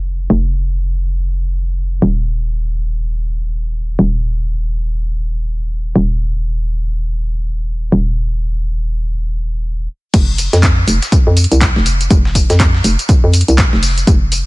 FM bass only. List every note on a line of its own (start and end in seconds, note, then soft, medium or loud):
0.00 0.28 F1 medium
0.30 2.00 F1 medium
2.02 3.97 D#1 medium
3.99 5.94 D#1 medium
5.96 7.90 D#1 medium
7.92 9.87 D#1 medium
10.14 10.49 F1 medium
10.53 10.85 F2 medium
10.88 11.00 F1 medium
11.27 11.46 F2 medium
11.52 11.71 C2 loud
11.76 12.08 F1 medium
12.11 12.46 F1 loud
12.50 12.81 F2 medium
12.84 12.96 F1 medium
13.24 13.43 F2 medium
13.48 13.67 C2 loud
13.73 14.04 F1 medium
14.07 14.42 F1 loud